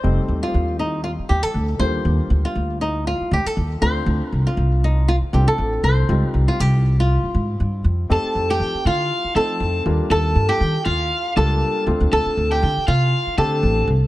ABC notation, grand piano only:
X:1
M:4/4
L:1/8
Q:"Swing 16ths" 1/4=119
K:Fmix
V:1 name="Grand piano"
[G,A,CE]6- [G,A,CE] [G,B,DF]- | [G,B,DF]6- [G,B,DF] [A,CDF]- | [A,CDF]4- [A,CDF] [A,CDF]3 | [G,CEF]8 |
[A,CEG]3 z2 [A,CEA]2 [G,B,DF]- | [G,B,DF]2 z3 [G,B,DF]2 [A,CDF]- | [A,CDF]2 z3 [A,CDG]2 z |]